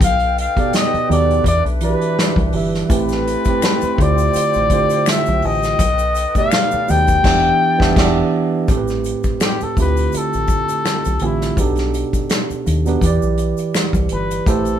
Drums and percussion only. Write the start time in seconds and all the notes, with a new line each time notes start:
0.01 kick, closed hi-hat
0.19 closed hi-hat
0.38 closed hi-hat
0.57 kick, closed hi-hat
0.73 snare, closed hi-hat
0.94 closed hi-hat
1.11 closed hi-hat
1.31 closed hi-hat
1.44 kick, closed hi-hat
1.66 closed hi-hat
1.81 closed hi-hat
2.02 closed hi-hat
2.19 snare, closed hi-hat
2.36 kick, closed hi-hat
2.53 open hi-hat
2.75 snare, closed hi-hat
2.90 kick, closed hi-hat, shaker
3.09 snare, closed hi-hat, shaker
3.27 closed hi-hat
3.45 kick, closed hi-hat, shaker
3.62 finger snap, snare, closed hi-hat, shaker
3.81 closed hi-hat, shaker
3.98 kick, closed hi-hat
4.18 closed hi-hat, shaker
4.34 closed hi-hat, shaker
4.53 closed hi-hat, shaker
4.70 kick, closed hi-hat, shaker
4.90 closed hi-hat, shaker
5.06 finger snap, snare, closed hi-hat, shaker
5.26 closed hi-hat, shaker
5.42 open hi-hat
5.63 snare, closed hi-hat, shaker
5.79 kick, closed hi-hat, shaker
5.98 closed hi-hat, shaker
6.15 closed hi-hat, shaker
6.35 kick, closed hi-hat, shaker
6.51 finger snap, snare, closed hi-hat, shaker
6.71 shaker
6.88 closed hi-hat, shaker
7.08 kick, closed hi-hat, shaker
7.24 kick, snare, crash
7.80 kick, snare
7.96 kick, snare, crash
8.68 kick, closed hi-hat, shaker
8.88 snare, shaker
9.04 closed hi-hat, shaker
9.24 kick, closed hi-hat, shaker
9.40 finger snap, snare, closed hi-hat, shaker
9.61 closed hi-hat, shaker
9.77 kick, closed hi-hat, shaker
9.97 closed hi-hat, shaker
10.12 closed hi-hat, shaker
10.33 closed hi-hat, shaker
10.47 kick, closed hi-hat, shaker
10.69 closed hi-hat, shaker
10.85 finger snap, snare, closed hi-hat, shaker
11.05 closed hi-hat, shaker
11.19 closed hi-hat
11.41 snare, closed hi-hat, shaker
11.57 kick, closed hi-hat, shaker
11.76 snare, closed hi-hat, shaker
11.94 closed hi-hat, shaker
12.13 kick, closed hi-hat, shaker
12.29 finger snap, snare, closed hi-hat, shaker
12.50 closed hi-hat, shaker
12.67 closed hi-hat, shaker
12.86 closed hi-hat, shaker
13.01 kick, closed hi-hat, shaker
13.22 shaker
13.38 closed hi-hat, shaker
13.57 closed hi-hat, shaker
13.74 finger snap, snare, closed hi-hat, shaker
13.93 kick, closed hi-hat, shaker
14.09 closed hi-hat
14.31 closed hi-hat, shaker
14.46 kick, closed hi-hat, shaker
14.65 closed hi-hat, shaker